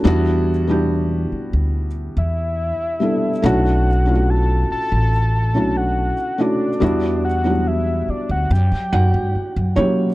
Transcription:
<<
  \new Staff \with { instrumentName = "Soft synth lead" } { \time 4/4 \key b \minor \tempo 4 = 71 r2 r8 e''4. | fis''4 a''8 a''4~ a''16 fis''8. d''8~ | d''8 fis''8 e''8 d''16 fis''16 g''4. r8 | }
  \new Staff \with { instrumentName = "Felt piano" } { \time 4/4 \key b \minor << { r1 | r1 | r2 r8 <fis' fis''>4 cis''8 | } \\ { <g b d' e' fis'>8 r16 <g b d' e' g'>4. r4 r16 <g b d' e' a'>16 r16 | <a cis' d' e' fis'>8 r16 <a cis' d' e' eis' fis'>4~ <a cis' d' e' eis' fis'>16 r8 <a cis' d' e' fis'>8. r16 <a cis' d' e' fis'>16 r16 | <g b d' e' fis'>8 r16 <fis g b d' e' fis'>4~ <fis g b d' e' fis'>16 r4. <fis ais cis' e' g'>16 r16 | } >> }
  \new Staff \with { instrumentName = "Upright bass" } { \clef bass \time 4/4 \key b \minor e,4. r16 d,8. e,8. r8. | b,,4. r16 a,,8. b,,8. r8. | e,4. r16 d,16 fis,16 fis16 fis,16 g,16 r16 fis,16 fis8 | }
>>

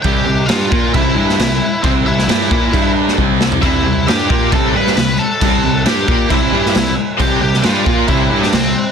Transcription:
<<
  \new Staff \with { instrumentName = "Lead electric guitar" } { \time 4/4 \key c \major \tempo 4 = 134 <g' g''>4 <f' f''>4 <e' e''>2 | <c' c''>8 <e' e''>2 r4. | <e' e''>4 <g' g''>4 <a' a''>8 <b' b''>4 <a' a''>8~ | <a' a''>4 <g' g''>4 <e' e''>4. r8 |
<g' g''>8 <g' g''>8 <f' f''>4 <e' e''>8. <d' d''>16 <c' c''>4 | }
  \new Staff \with { instrumentName = "Distorted electric guitar" } { \clef bass \time 4/4 \key c \major <c g c'>8 <c g>8 <g d' g'>8 <bes f' bes'>8 <c g c'>8 <g d' g'>8 <c g>8 r8 | <c g c'>8 <c g>8 <g d' g'>8 <bes f' bes'>8 <g d' g'>4 <c g c'>4 | <c g c'>8 <c g>8 <g d' g'>8 <bes f' bes'>8 <c g c'>8 <g d' g'>8 <c g>8 r8 | <c g c'>8 <c g>8 <g d' g'>8 <bes f' bes'>8 <c g c'>8 <g d' g'>8 <c g>8 r8 |
<c g c'>8 <c g>8 <g d' g'>8 <bes f' bes'>8 <c g c'>8 <g d' g'>8 <c g>8 r8 | }
  \new Staff \with { instrumentName = "Distorted electric guitar" } { \clef bass \time 4/4 \key c \major <c g c'>8 <c g>8 <g d' g'>8 <bes f' bes'>8 <c g c'>8 <g d' g'>8 <c g>8 r8 | <c g c'>8 <c g>8 <g d' g'>8 <bes f' bes'>8 <g d' g'>4 <c g c'>4 | <c g c'>8 <c g>8 <g d' g'>8 <bes f' bes'>8 <c g c'>8 <g d' g'>8 <c g>8 r8 | <c g c'>8 <c g>8 <g d' g'>8 <bes f' bes'>8 <c g c'>8 <g d' g'>8 <c g>8 r8 |
<c g c'>8 <c g>8 <g d' g'>8 <bes f' bes'>8 <c g c'>8 <g d' g'>8 <c g>8 r8 | }
  \new Staff \with { instrumentName = "Overdriven electric guitar" } { \clef bass \time 4/4 \key c \major r1 | r1 | <c g c'>8 <c g>8 <g d' g'>8 <bes f' bes'>8 <c g c'>8 <g d' g'>8 <c g>8 r8 | <c g c'>8 <c g>8 <g d' g'>8 <bes f' bes'>8 <c g c'>8 <g d' g'>8 <c g>8 r8 |
<c g c'>8 <c g>8 <g d' g'>8 <bes f' bes'>8 <c g c'>8 <g d' g'>8 <c g>8 r8 | }
  \new Staff \with { instrumentName = "Picked electric bass" } { \clef bass \time 4/4 \key c \major c,8 c,8 g,8 bes,8 c,8 g,8 c,8 r8 | c,8 c,8 g,8 bes,8 g,4 c,4 | c,8 c,8 g,8 bes,8 c,8 g,8 c,8 r8 | c,8 c,8 g,8 bes,8 c,8 g,8 c,8 r8 |
c,8 c,8 g,8 bes,8 c,8 g,8 c,8 r8 | }
  \new DrumStaff \with { instrumentName = "Drums" } \drummode { \time 4/4 <cymc bd>4 <cymc sn>8 bd8 <cymc bd>8. sn16 <cymc sn>4 | <cymc bd>8. sn16 <cymc sn>8 bd8 <cymc bd>8. sn16 bd8 sn16 tomfh16 | <cymc bd>4 <cymc sn>8 bd8 <cymc bd>8. sn16 <cymc sn>4 | <cymc bd>4 <cymc sn>8 bd8 <cymc bd>8. sn16 <cymc sn>4 |
<cymc bd>8. sn16 <cymc sn>8 bd8 <cymc bd>8. sn16 <cymc sn>4 | }
>>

